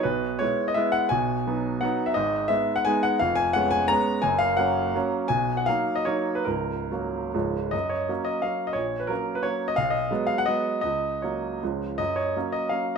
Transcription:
<<
  \new Staff \with { instrumentName = "Grand piano" } { \time 3/4 \key gis \minor \tempo 4 = 169 b'4 cis''8. dis''16 e''8 fis''8 | gis''2 fis''8. e''16 | dis''4 e''8. fis''16 gis''8 fis''8 | \key fis \major eis''8 gis''8 fis''8 gis''8 ais''4 |
gis''8 eis''8 fis''4. r8 | gis''8. fis''16 eis''8. dis''16 cis''8. b'16 | ais'2 r4 | dis''8 cis''4 dis''8 eis''8. dis''16 |
cis''8. b'16 ais'8. b'16 cis''8. dis''16 | eis''8 dis''4 eis''16 fis''16 dis''4 | dis''4 cis''4 r4 | dis''8 cis''4 dis''8 eis''8. r16 | }
  \new Staff \with { instrumentName = "Grand piano" } { \clef bass \time 3/4 \key gis \minor <b,, b,>4 <gis b e'>4 <gis b e'>4 | <b,, b,>4 <fis b dis'>4 <fis b dis'>4 | <gis,, gis,>4 <gis b dis'>4 <gis b dis'>4 | \key fis \major <eis,, eis,>4 <gis b cis'>4 <gis b cis'>4 |
<fis,, fis,>4 <fis ais cis'>4 <fis ais cis'>4 | <b,, b,>4 <fis ais dis'>4 <fis ais dis'>4 | <cis,, cis,>4 <fis ais cis'>4 <cis,, cis, eis gis cis'>4 | fis,4 <fis ais cis'>4 <fis ais cis'>4 |
ais,,4 <fis ais cis'>4 <fis ais cis'>4 | b,,4 <fis gis b>4 <fis gis b>4 | cis,4 <fis ais>4 <cis, eis gis cis'>4 | fis,4 <fis ais cis'>4 <fis ais cis'>4 | }
>>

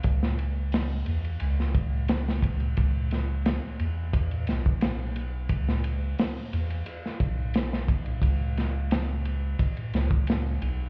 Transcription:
<<
  \new Staff \with { instrumentName = "Sub bass" } { \clef bass \time 4/4 \key e \major \tempo 4 = 88 cis,4. e,8 cis,2 | cis,4 r8 e,4 b,,4. | cis,4 r8 e,8 r8 b,,4. | cis,2 r8 cis,4 b,,8 | }
  \new DrumStaff \with { instrumentName = "Drums" } \drummode { \time 4/4 <bd cymr>16 sn16 cymr8 <hho sn>8 cymr16 cymr16 cymr16 sn16 <bd cymr>8 <cymr sn>16 sn16 <bd cymr>16 cymr16 | <bd cymr>8 <cymr sn>8 <cymr sn>8 cymr8 <bd cymr>16 cymr16 <cymr sn>16 bd16 <cymr sn>8 cymr8 | <bd cymr>16 sn16 cymr8 <hho sn>8 cymr16 cymr16 cymr16 sn16 <bd cymr>8 <cymr sn>16 sn16 <bd cymr>16 cymr16 | <bd cymr>8 <cymr sn>8 <cymr sn>8 cymr8 <bd cymr>16 cymr16 <cymr sn>16 bd16 <cymr sn>8 cymr8 | }
>>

